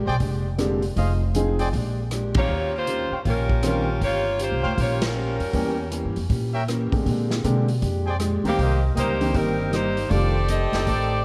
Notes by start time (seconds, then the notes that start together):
0.05 B1 G#4 C5 D5 G5
0.20 F1 A#2 G#3 D4 G4, kick, open hi-hat
0.58 A#2 D3 G#3 A#3 C4 D4 G4, cross-stick, closed hi-hat
0.82 open hi-hat
0.96 F1 F3 D#4 G#4 C5 D#5 F5, kick, open hi-hat
1.34 F3 G#3 C4 D#4 G#4 C5, closed hi-hat
1.59 G#4 C5 D5 G5, open hi-hat
1.73 A#1 A#2 G#3 D4 G4, kick, open hi-hat
2.11 A#2 G#3 D4 G4, cross-stick, closed hi-hat
2.35 D#3 G3 A#3 C4 C#4 F4 G4 C#5, kick, ride
2.48 D#2 D#3 C#4 G4 C5
2.76 A#3 F4 G4 C5
2.87 D#3 C#4 G4 C5, closed hi-hat
3.11 C5 C#5 F5 G5, muted upright bass stroke
3.25 A#1 D#3 G3 C#4 F4 G4 A#4 C5, kick, open hi-hat
3.49 kick
3.62 D#3 G3 C4 C#4 F4 G4 A#4 C5, cross-stick, closed hi-hat
4.00 G1 D#3 A#3 C#4 F4 G4 C5 C#5, kick, open hi-hat
4.39 D#3 A#3 C#4 F4 G4 C5, closed hi-hat
4.52 C2
4.63 D2 C5 C#5 F5 G5
4.76 A#1 D#3 A#3 C#4 F4 G4 C5, kick, open hi-hat
4.80 C#5
5.02 G3 C#4 F4 A#4, snare, ride
5.14 D#3 C#4 G4 C5
5.40 F2, open hi-hat
5.53 E2 E3 G3 A#3 C#4 G4, kick, open hi-hat
5.91 E3 A#3 C#4 G4, closed hi-hat
6.05 G2
6.16 F2, open hi-hat
6.29 A#2 E3 A#3 C#4 G4, kick, open hi-hat
6.53 A#4 C#5 E5 G5
6.68 E3 A#3 C#4 G4, cross-stick, closed hi-hat
6.91 A2 D3 G#3 A#3 C4 G4, kick, open hi-hat
7.06 A#2 G#3 D4 G4, kick, open hi-hat
7.31 snare
7.43 A#2 B2 D3 G#3 A#3 C4 D4 G4, closed hi-hat
7.68 open hi-hat
7.81 F2 A#2 G#3 D4 G4, kick, open hi-hat
8.06 G#4 C5 D5 G5
8.19 A#2 G#3 D4 G4, cross-stick, closed hi-hat
8.44 D2 D#3 G3 A#3 C4 G4, open hi-hat
8.56 C2 C3 G3 A#3 D#4 A#4 C5 D#5 G5, kick, open hi-hat
8.95 C#2 C3 G3 A#3 D#4 G4 A#4 C5 D#5 G5, closed hi-hat
9.21 D#3 G3 A#3 C4 G4, open hi-hat
9.33 G1 C3 G3 A#3 C4 D#4 A#4, kick, open hi-hat
9.71 C3 G3 A#3 D#4 G4 C5, cross-stick, closed hi-hat
9.97 open hi-hat
10.09 F1 F2 D#3 G3 A3 C4 D4 F4 G4 A4 D5, kick, open hi-hat
10.48 F2 D#3 A3 C4 D4 G4 A4 D#5, closed hi-hat
10.72 F#1 D#4 A4 D5 G5, snare, open hi-hat
10.85 A1 F2 D#3 A3 C4 D4 G4 A4 D5, kick, open hi-hat